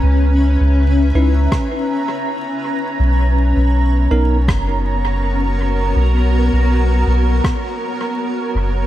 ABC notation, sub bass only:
X:1
M:4/4
L:1/16
Q:"Swing 16ths" 1/4=81
K:B
V:1 name="Sub bass" clef=bass
C,,3 C,,3 C,,2 z8 | B,,,3 B,,,3 B,,,2 F,,,8 | B,,,3 B,,,3 B,,,2 z6 F,,,2 |]